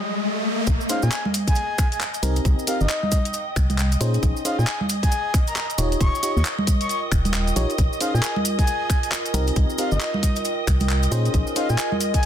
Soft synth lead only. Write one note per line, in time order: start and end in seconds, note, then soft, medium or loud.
0.89 1.00 F5 loud
1.03 1.22 G#5 medium
1.48 1.77 G#5 medium
1.78 1.87 G#5 medium
1.92 1.98 G#5 medium
2.67 2.78 F5 medium
2.81 3.42 D#5 loud
4.45 4.56 F5 medium
4.59 4.78 G#5 loud
5.03 5.32 G#5 loud
5.48 5.53 A#5 medium
5.56 5.65 A#5 medium
6.01 6.21 C#6 loud
6.23 6.31 C#6 medium
6.36 6.42 C#6 medium
6.81 6.87 C#6 medium
6.90 6.98 C#6 medium
8.01 8.12 F5 loud
8.14 8.34 G#5 medium
8.59 8.88 G#5 loud
8.90 8.98 G#5 medium
9.03 9.09 G#5 medium
9.79 9.89 F5 loud
9.92 10.53 D#5 loud
11.56 11.67 F5 loud
11.70 11.89 G#5 medium
12.14 12.26 G#5 loud